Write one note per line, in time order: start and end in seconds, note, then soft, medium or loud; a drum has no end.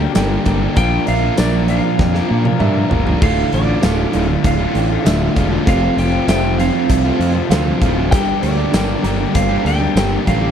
0.00 0.15 G3 medium
0.00 0.15 A#3 medium
0.00 0.17 D4 medium
0.00 0.16 G4 medium
0.00 0.76 G5 medium
0.00 muted distorted electric guitar stroke soft
0.14 0.36 G1 medium
0.14 0.74 G2 medium
0.14 0.75 D3 medium
0.14 0.44 G3 loud
0.14 0.45 A#3 loud
0.14 0.47 D4 loud
0.14 0.47 G4 loud
0.14 0.40 A4 loud
0.14 0.40 A#4 medium
0.14 0.40 G5 loud
0.14 snare loud
0.14 closed hi-hat medium
0.14 tambourine loud
0.45 0.67 G1 medium
0.45 0.63 G3 medium
0.45 0.62 A#3 medium
0.45 0.62 D4 medium
0.45 0.60 G4 medium
0.45 0.70 A4 medium
0.45 0.71 A#4 medium
0.45 0.71 G5 medium
0.45 kick medium
0.45 closed hi-hat medium
0.61 0.76 G3 medium
0.61 0.76 A#3 medium
0.61 0.78 D4 medium
0.61 0.75 G4 medium
0.76 0.97 A#1 loud
0.76 1.36 A#2 medium
0.76 1.37 F3 medium
0.76 1.06 A#3 loud
0.76 1.08 D4 medium
0.76 1.09 F4 medium
0.76 1.01 A#4 medium
0.76 1.09 A#4 medium
0.76 1.01 D5 medium
0.76 1.01 F5 medium
0.76 1.06 G5 loud
0.76 kick loud
0.76 closed hi-hat medium
1.05 1.28 A#1 medium
1.05 1.24 A#3 medium
1.05 1.24 D4 medium
1.05 1.31 A#4 medium
1.05 1.31 D5 medium
1.05 1.32 E5 medium
1.05 1.40 F5 medium
1.05 closed hi-hat medium
1.09 1.23 F4 medium
1.09 1.20 A#4 medium
1.22 1.37 A#3 medium
1.22 1.39 D4 medium
1.22 1.39 F4 medium
1.22 1.39 A#4 medium
1.36 1.79 A#1 medium
1.36 1.99 A#2 medium
1.36 2.61 F3 medium
1.36 1.67 A#3 medium
1.36 1.69 D4 loud
1.36 1.70 F4 loud
1.36 1.62 A#4 medium
1.36 1.62 D5 medium
1.36 1.70 D5 medium
1.36 1.63 E5 medium
1.36 snare loud
1.36 closed hi-hat medium
1.36 tambourine loud
1.41 1.70 A#4 loud
1.68 1.86 A#3 medium
1.68 1.85 D4 medium
1.68 1.85 F4 medium
1.68 1.93 A#4 medium
1.68 1.93 D5 medium
1.68 1.93 F5 medium
1.68 2.88 F5 medium
1.68 closed hi-hat medium
1.72 1.82 A#4 medium
1.84 2.17 A#3 medium
1.84 2.16 D4 medium
1.84 2.15 F4 medium
1.84 2.13 A#4 medium
1.84 muted distorted electric guitar stroke medium
1.98 2.20 F2 medium
1.98 2.23 A#4 medium
1.98 2.24 D5 medium
1.98 2.24 G5 medium
1.98 kick medium
1.98 snare medium
2.14 2.47 A#3 medium
2.14 2.47 D4 medium
2.14 2.46 F4 medium
2.14 2.44 A#4 medium
2.14 snare medium
2.28 2.51 A#2 medium
2.28 2.44 A#3 medium
2.28 2.45 D4 medium
2.28 2.45 F4 medium
2.28 2.54 A#4 medium
2.28 2.44 A#4 medium
2.28 2.54 D5 medium
2.28 2.54 F5 medium
2.45 2.61 A#3 medium
2.45 2.61 D4 medium
2.45 2.63 F4 medium
2.45 2.62 A#4 medium
2.45 muted distorted electric guitar stroke medium
2.45 high tom medium
2.59 2.82 G2 medium
2.59 3.20 A#2 medium
2.59 3.22 F3 medium
2.59 2.89 A#3 loud
2.59 2.91 D4 loud
2.59 2.84 A#4 loud
2.59 2.85 D5 loud
2.59 2.85 E5 loud
2.59 mid tom medium
2.63 2.93 F4 medium
2.63 2.93 A#4 loud
2.89 3.12 G1 medium
2.89 3.09 A#3 medium
2.89 3.08 D4 medium
2.89 3.07 F4 medium
2.89 3.15 A#4 medium
2.89 3.15 D5 medium
2.89 3.16 F5 medium
2.89 floor tom loud
2.94 3.05 A#4 medium
3.06 3.22 A#3 medium
3.06 3.21 D4 medium
3.06 3.25 F4 medium
3.06 3.20 A#4 medium
3.06 floor tom medium
3.21 3.42 D1 medium
3.21 3.81 D2 medium
3.21 3.50 A2 medium
3.21 3.52 D3 loud
3.21 3.54 A3 medium
3.21 3.54 F4 loud
3.21 3.46 A4 medium
3.21 3.47 D5 medium
3.21 3.47 F5 medium
3.21 3.54 F5 loud
3.21 kick loud
3.21 crash loud
3.51 3.73 A1 medium
3.51 3.82 A2 medium
3.51 3.69 D3 medium
3.51 3.68 A3 medium
3.51 3.66 F4 medium
3.51 3.77 A4 medium
3.51 3.77 D5 medium
3.51 4.48 D5 medium
3.51 3.77 F5 medium
3.51 closed hi-hat medium
3.67 3.83 D3 medium
3.67 3.84 A3 medium
3.67 3.85 F4 medium
3.82 4.04 D1 medium
3.82 4.44 D2 medium
3.82 4.12 A2 medium
3.82 4.13 D3 medium
3.82 4.15 A3 medium
3.82 4.07 A4 medium
3.82 4.07 D5 medium
3.82 4.08 F5 loud
3.82 snare loud
3.82 closed hi-hat medium
3.82 tambourine loud
3.86 4.16 F4 loud
4.12 4.35 D1 medium
4.12 4.43 D2 medium
4.12 4.60 A2 medium
4.12 4.31 D3 medium
4.12 4.30 A3 medium
4.12 4.38 A4 medium
4.12 4.38 D5 medium
4.12 4.39 F5 medium
4.12 closed hi-hat medium
4.17 4.27 F4 medium
4.28 4.61 D3 medium
4.28 4.61 A3 medium
4.28 4.58 F4 medium
4.28 muted distorted electric guitar stroke soft
4.44 4.65 D1 loud
4.44 5.04 D2 medium
4.44 5.04 A2 loud
4.44 5.05 D3 medium
4.44 4.69 A4 medium
4.44 4.69 D5 medium
4.44 4.69 F5 medium
4.44 5.67 F5 medium
4.44 kick medium
4.44 closed hi-hat medium
4.59 4.92 D3 medium
4.59 4.91 A3 medium
4.59 4.89 F4 medium
4.72 4.96 A1 medium
4.72 4.89 A2 medium
4.72 4.89 D3 medium
4.72 4.89 A3 medium
4.72 4.88 F4 medium
4.72 4.99 A4 medium
4.72 5.00 D5 medium
4.72 5.00 G5 medium
4.72 closed hi-hat medium
4.89 5.07 A3 medium
4.89 5.07 F4 medium
4.89 muted distorted electric guitar stroke medium
4.93 5.06 D3 medium
5.04 5.27 D1 medium
5.04 5.65 D2 medium
5.04 5.35 A2 loud
5.04 5.36 D3 loud
5.04 5.38 A3 loud
5.04 5.30 A4 loud
5.04 5.30 D5 medium
5.04 5.30 E5 loud
5.04 snare loud
5.04 closed hi-hat loud
5.04 tambourine loud
5.08 5.38 F4 loud
5.35 5.57 E1 medium
5.35 5.65 D2 medium
5.35 5.65 A2 medium
5.35 5.54 D3 medium
5.35 5.53 A3 medium
5.35 5.61 A4 medium
5.35 5.61 D5 medium
5.35 5.61 F5 medium
5.35 kick medium
5.35 closed hi-hat medium
5.39 5.50 F4 medium
5.51 5.67 D3 medium
5.51 5.68 A3 medium
5.51 5.65 F4 medium
5.65 5.88 F1 loud
5.65 6.26 F2 medium
5.65 6.27 C3 medium
5.65 5.95 F3 medium
5.65 5.98 A3 loud
5.65 5.98 C4 medium
5.65 5.91 A4 medium
5.65 5.91 C5 medium
5.65 5.91 F5 medium
5.65 5.97 F5 loud
5.65 kick loud
5.65 closed hi-hat medium
5.69 5.99 F4 medium
5.96 6.18 F1 medium
5.96 6.15 F3 medium
5.96 6.14 A3 medium
5.96 6.12 C4 medium
5.96 6.22 A4 medium
5.96 6.22 C5 medium
5.96 6.22 F5 medium
5.96 6.28 G5 loud
5.96 closed hi-hat medium
6.00 6.11 F4 medium
6.12 6.28 F3 medium
6.12 6.29 A3 medium
6.12 6.29 C4 medium
6.12 6.30 F4 medium
6.27 6.69 F1 loud
6.27 6.89 F2 medium
6.27 6.90 C3 medium
6.27 6.56 F3 medium
6.27 6.59 A3 loud
6.27 6.59 C4 loud
6.27 6.60 F4 loud
6.27 6.52 A4 medium
6.27 6.53 C5 medium
6.27 6.53 E5 loud
6.27 6.60 G5 loud
6.27 snare loud
6.27 closed hi-hat loud
6.27 tambourine loud
6.57 6.88 F2 medium
6.57 6.89 C3 loud
6.57 6.76 F3 medium
6.57 6.74 A3 medium
6.57 6.73 C4 medium
6.57 6.83 A4 medium
6.57 6.83 C5 medium
6.57 6.83 F5 medium
6.57 7.78 F5 medium
6.57 closed hi-hat medium
6.61 6.72 F4 medium
6.73 7.07 F3 medium
6.73 7.06 A3 medium
6.73 7.04 C4 medium
6.73 7.03 F4 medium
6.73 muted distorted electric guitar stroke medium
6.88 7.10 C2 loud
6.88 7.49 F2 medium
6.88 7.49 C3 loud
6.88 7.50 F3 loud
6.88 7.14 A4 medium
6.88 7.14 C5 medium
6.88 7.14 E5 medium
6.88 kick medium
6.88 closed hi-hat loud
7.04 7.36 F3 medium
7.04 7.35 A3 medium
7.04 7.34 C4 medium
7.04 7.33 F4 medium
7.19 7.40 F2 medium
7.19 7.35 F3 medium
7.19 7.34 A3 medium
7.19 7.34 C4 medium
7.19 7.34 F4 medium
7.19 7.44 A4 medium
7.19 7.45 C5 medium
7.19 7.45 F5 medium
7.19 closed hi-hat medium
7.34 7.50 F3 medium
7.34 7.51 A3 medium
7.34 7.52 C4 medium
7.34 7.52 F4 medium
7.34 muted distorted electric guitar stroke soft
7.49 7.71 D2 loud
7.49 8.10 F2 loud
7.49 8.11 C3 medium
7.49 7.80 F3 loud
7.49 7.81 A3 loud
7.49 7.82 C4 loud
7.49 7.75 A4 loud
7.49 7.75 C5 loud
7.49 7.75 F5 loud
7.49 snare loud
7.49 closed hi-hat loud
7.49 tambourine loud
7.54 7.84 F4 loud
7.81 8.12 D1 medium
7.81 8.11 F2 medium
7.81 8.11 C3 medium
7.81 7.99 F3 medium
7.81 7.97 A3 medium
7.81 7.97 C4 medium
7.81 8.06 A4 medium
7.81 8.06 C5 medium
7.81 8.07 F5 loud
7.81 kick medium
7.81 closed hi-hat medium
7.85 7.95 F4 medium
7.96 8.12 F3 soft
7.96 8.12 A3 medium
7.96 8.11 C4 medium
7.96 8.11 F4 medium
8.11 8.33 G1 loud
8.11 8.72 G2 medium
8.11 8.73 D3 medium
8.11 8.41 G3 medium
8.11 8.43 A#3 loud
8.11 8.44 D4 loud
8.11 8.36 A4 medium
8.11 8.37 A#4 medium
8.11 8.41 G5 loud
8.11 8.37 G5 medium
8.11 kick loud
8.11 closed hi-hat loud
8.15 8.44 G4 medium
8.42 8.64 D2 medium
8.42 8.60 G3 medium
8.42 8.59 A#3 medium
8.42 8.59 D4 medium
8.42 8.57 G4 medium
8.42 8.67 A4 medium
8.42 8.68 A#4 medium
8.42 9.31 D5 medium
8.42 8.68 G5 medium
8.42 closed hi-hat medium
8.58 8.73 G3 medium
8.58 8.74 A#3 medium
8.58 8.76 D4 medium
8.58 8.75 G4 medium
8.73 8.94 G1 loud
8.73 9.35 G2 loud
8.73 9.35 D3 medium
8.73 9.02 G3 loud
8.73 9.04 A#3 loud
8.73 9.05 D4 loud
8.73 9.06 G4 loud
8.73 8.98 A4 loud
8.73 8.98 A#4 medium
8.73 8.99 G5 loud
8.73 snare loud
8.73 closed hi-hat medium
8.73 tambourine loud
9.03 9.25 G1 medium
9.03 9.34 G2 medium
9.03 9.35 D3 medium
9.03 9.21 G3 medium
9.03 9.20 A#3 medium
9.03 9.20 D4 medium
9.03 9.17 G4 medium
9.03 9.29 A4 medium
9.03 9.29 A#4 medium
9.03 9.29 A#5 medium
9.03 closed hi-hat medium
9.18 9.51 G3 medium
9.18 9.50 A#3 medium
9.18 9.50 D4 medium
9.18 9.48 G4 medium
9.18 muted distorted electric guitar stroke medium
9.33 9.56 G1 medium
9.33 9.95 G2 medium
9.33 9.96 D3 loud
9.33 9.96 G3 medium
9.33 9.59 A4 medium
9.33 9.59 A#4 medium
9.33 9.59 C5 medium
9.33 9.64 F5 medium
9.33 kick medium
9.33 closed hi-hat loud
9.49 9.82 G3 medium
9.49 9.81 A#3 medium
9.49 9.80 D4 medium
9.49 9.78 G4 medium
9.64 9.86 D2 medium
9.64 9.80 G3 medium
9.64 9.80 A#3 medium
9.64 9.81 D4 medium
9.64 9.79 G4 medium
9.64 9.89 A4 medium
9.64 9.90 A#4 medium
9.64 9.90 G5 medium
9.64 10.24 G5 loud
9.64 closed hi-hat medium
9.79 9.95 G3 medium
9.79 9.96 A#3 medium
9.79 9.97 D4 medium
9.79 9.98 G4 medium
9.79 muted distorted electric guitar stroke medium
9.95 10.16 G1 medium
9.95 10.51 G2 loud
9.95 10.51 D3 medium
9.95 10.25 G3 loud
9.95 10.26 A#3 loud
9.95 10.28 D4 loud
9.95 10.29 G4 loud
9.95 10.21 A4 loud
9.95 10.21 A#4 medium
9.95 10.21 G5 loud
9.95 snare loud
9.95 closed hi-hat medium
9.95 tambourine loud
10.25 10.48 A1 medium
10.25 10.51 G2 medium
10.25 10.51 D3 medium
10.25 10.43 G3 medium
10.25 10.42 A#3 medium
10.25 10.42 D4 medium
10.25 10.51 A4 medium
10.25 10.51 A#4 medium
10.25 10.51 F5 medium
10.25 10.51 G5 medium
10.25 kick medium
10.25 closed hi-hat medium
10.30 10.40 G4 medium
10.41 10.51 G3 medium
10.41 10.51 A#3 medium
10.41 10.51 D4 medium
10.41 10.51 G4 medium